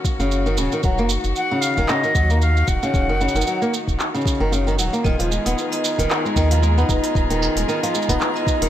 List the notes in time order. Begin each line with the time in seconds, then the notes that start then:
Already playing: D#3 C#4 F#4
0.05 kick, shaker
0.19 F#1 C#3, shaker
0.31 shaker
0.46 D#3, shaker
0.57 D#1 C#3, shaker
0.72 D#3, shaker
0.82 D#1 F#3 D#4, kick, shaker
0.98 F#1 A#3, shaker
1.09 shaker
1.24 F#1, shaker
1.36 F#5, shaker
1.51 C#3
1.61 F5, shaker
1.77 D#1 D#3, kick, shaker
1.88 C#3 D#5, clap, shaker
2.03 D#3, shaker
2.15 D#2 F#3, kick, shaker
2.30 A#3, shaker
2.41 F5, shaker
2.57 shaker
2.68 D#1 F#5, kick, shaker
2.83 C#3, shaker
2.94 D#1, kick, shaker
3.08 F#1 D#3
3.21 C#3, shaker
3.28 shaker
3.34 F#1 D#3, shaker
3.41 shaker
3.47 F#3, shaker
3.62 A#3, shaker
3.74 shaker
3.88 D#1, kick, shaker
4.00 clap, shaker
4.14 C#3, shaker
4.21 shaker
4.26 kick, shaker
4.34 shaker
4.40 F#1 D#3
4.52 C#3, shaker
4.67 D#3, shaker
4.79 D#1 F#3, shaker
4.93 A#3, shaker
5.03 D#1 D#3 B3 F4 G#4 D#5 A#5, kick, shaker
5.19 D#1 F3, open hi-hat, shaker
5.31 G#3, shaker
5.45 D#1 B3 D#4, open hi-hat, shaker
5.58 shaker
5.72 D#5, open hi-hat, shaker
5.84 shaker
5.98 D#1 D#3, kick, open hi-hat, shaker
6.10 D#4, clap, shaker
6.25 G#3, shaker
6.36 D#2 D#3 D#5, kick, shaker
6.51 F3, open hi-hat, shaker
6.62 G#3, shaker
6.78 B3 D#4, shaker
6.89 D#1, kick, shaker
7.04 D#5, open hi-hat, shaker
7.15 D#1, kick, shaker
7.29 D#1 D#3, open hi-hat, shaker
7.42 D#4, shaker
7.56 D#1 G#3, open hi-hat, shaker
7.68 D#3 D#5, shaker
7.83 F3, open hi-hat, shaker
7.95 G#3, shaker
8.02 shaker
8.09 D#1 B3 D#4, kick, open hi-hat
8.21 clap, shaker
8.36 D#5, shaker
8.47 kick, shaker
8.61 D#1 D#3, open hi-hat